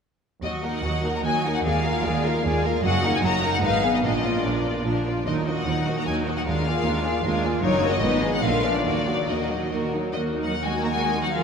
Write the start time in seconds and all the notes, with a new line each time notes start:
0.43 D#2 F#3 F#4 D#5
0.64 A#3 D#4 A#4 F#5
0.74 F#5
0.84 D#2 F#3 F#4 D#5
1.05 A#3 D#4 A#4 F#5
1.15 A#5
1.24 D#2 F#3 F#4 D#5 G#5
1.45 A#3 D#4 A#4 F#5
1.55 F#5
1.64 D#2 G#3 G#4 D5 F5
1.85 A#3 F4 A#4 F5
2.04 D#2 G#3 G#4 D5
2.24 A#3 F4 A#4 F5
2.44 D#2 G#3 G#4 D5
2.64 A#3 F4 A#4 F5
2.84 F#1 F#2 F#3 F#4 D#5 F#5
3.04 A#3 D#4 A#4 F#5
3.14 G#5
3.23 F#1 F#2 F#3 F#4 D#5 A#5
3.42 A#3 D#4 A#4 F#5
3.54 F#5
3.62 G#1 G#2 G#3 D#4 B4 D#5 F5
3.82 B3 G#4 B4
3.94 D#5
4.03 A#1 A#2 F3 D4 A#4 D#5
4.23 A#3 F4 D5
4.44 A#1 A#2 F3 D4 A#4 D5
4.65 A#3 F4 D5
4.85 A#1 A#2 F3 D4 A#4
5.06 A#3 F4 D5
5.27 D#2 F#3 D#4 A#4 D#5
5.47 A#3 F#4 D#5
5.57 F#5
5.67 D#2 F#3 D#4 A#4
5.87 A#3 F#4 D#5
5.98 A#5
6.06 D#2 F#3 D#4 A#4 G#5
6.25 A#3 F#4 D#5
6.37 F#5
6.46 D#2 G#3 D4 F4 A#4 F5
6.65 A#3 F4 G#4 D5
6.84 D#2 G#3 D4 F4 A#4
7.04 A#3 F4 G#4 D5
7.24 D#2 G#3 D4 F4 A#4
7.44 A#3 F4 G#4 D5
7.63 F#1 F#2 F#3 D#4 A#4 C#5
7.83 A#3 F#4 D#5
7.93 D#5
8.02 G#1 G#2 B3 D#4 B4
8.22 G#3 B3 D#4 G#4
8.33 F#5
8.42 A#1 A#2 D3 A#3 F4 A#4 F5
8.64 F3 D4 D5
8.75 D5
8.85 D#2 D#3 A#3 F#4 A#4 D5
9.07 F#3 D#4 F#4
9.28 D#2 D#3 A#3 F#4 A#4 D#5
9.50 F#3 D#4 F#4
9.71 D#2 D#3 A#3 F#4 A#4
9.92 F#3 D#4 F#4
10.13 D#2 D#3 A#3 F#4 D#5
10.34 D#4 A#4
10.44 F#3 F#5
10.54 A#3 F#4
10.64 G#3 G#5
10.74 D#4 A#4
10.83 A#3 A#5
10.93 G#3 A#3 F#4 G#5
11.14 D#4 A#4
11.23 F#3 F#5
11.32 F3 F4 G#4 A#4 F5